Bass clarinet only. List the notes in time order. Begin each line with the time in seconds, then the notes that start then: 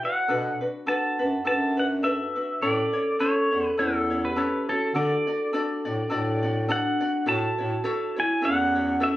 0.30 B2
1.21 F#2
1.46 F#2
2.62 A2
3.52 E2
3.78 E2
4.94 D3
5.86 A2
6.11 A2
7.28 A2
7.60 A2
8.44 E2